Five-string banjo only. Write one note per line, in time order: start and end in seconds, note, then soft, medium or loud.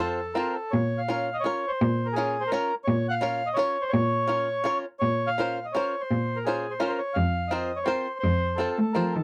0.00 0.19 C4 medium
0.00 0.19 F4 medium
0.00 0.20 A4 medium
0.00 0.20 C5 medium
0.35 0.55 C4 medium
0.35 0.56 F4 soft
0.35 0.56 A4 medium
0.35 0.56 C5 medium
1.08 1.28 C#4 medium
1.08 1.28 F4 soft
1.08 1.28 A#4 medium
1.08 1.29 C#5 medium
1.44 1.64 C#4 medium
1.44 1.65 F4 soft
1.44 1.65 A#4 soft
1.44 1.65 C#5 medium
2.16 2.36 C#4 medium
2.16 2.36 F4 medium
2.16 2.36 A#4 medium
2.16 2.36 C#5 medium
2.52 2.71 C#4 medium
2.52 2.71 F4 medium
2.52 2.71 A#4 medium
2.52 2.72 C#5 medium
3.21 3.40 C#4 medium
3.21 3.41 F4 medium
3.21 3.41 A#4 medium
3.21 3.41 C#5 medium
3.57 3.76 C#4 medium
3.57 3.76 F4 medium
3.57 3.76 A#4 medium
3.57 3.77 C#5 medium
4.28 4.47 C#4 medium
4.28 4.48 F4 medium
4.28 4.48 A#4 soft
4.28 4.48 C#5 medium
4.64 4.84 C#4 medium
4.64 4.84 F4 medium
4.64 4.84 A#4 medium
4.64 4.85 C#5 medium
5.38 5.58 C#4 medium
5.38 5.58 F4 medium
5.38 5.58 A#4 medium
5.38 5.59 C5 medium
5.75 5.94 C#4 medium
5.75 5.94 F4 medium
5.75 5.94 A#4 medium
5.75 5.95 C5 medium
6.47 6.65 C#4 medium
6.47 6.65 F4 medium
6.47 6.66 A#4 soft
6.47 6.66 C5 medium
6.80 7.00 C#4 medium
6.80 7.00 F4 medium
6.80 7.00 A#4 medium
6.80 7.00 C5 medium
7.51 7.71 C4 medium
7.51 7.71 F4 medium
7.51 7.71 A#4 medium
7.51 7.71 C5 medium
7.86 8.06 C4 medium
7.86 8.07 F4 medium
7.86 8.07 A#4 medium
7.86 8.07 C5 medium
8.58 8.78 C4 medium
8.58 8.79 F4 medium
8.58 8.79 A4 medium
8.58 8.80 C5 medium
8.95 9.15 C4 medium
8.95 9.16 F4 soft
8.95 9.16 A4 medium
8.95 9.16 C5 medium